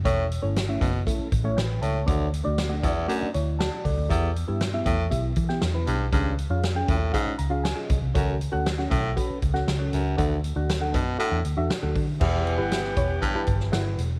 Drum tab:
CC |----------------|----------------|----------------|----------------|
HH |x-x-x-x-x-x-x-x-|x-x-x-x-x-x-x-o-|x-x-x-x-x-x-x-x-|x-x-x-x-x-x-x-x-|
SD |----o-------o---|----o-------o---|----o------oo---|----o-------o---|
BD |o-----o-o-o-----|o-----o-------o-|o-----o-o-o-----|o-----o-o-----o-|

CC |----------------|----------------|x---------------|
HH |x-x-x-x-x-x-x-x-|x-x-x-x-x-x-x-o-|--x-x-x-x-x-x-x-|
SD |----oo-----oo---|----o-------o---|----oo-----oo---|
BD |o-----o-o-o-----|o-----o-------o-|o-----o-o-o-----|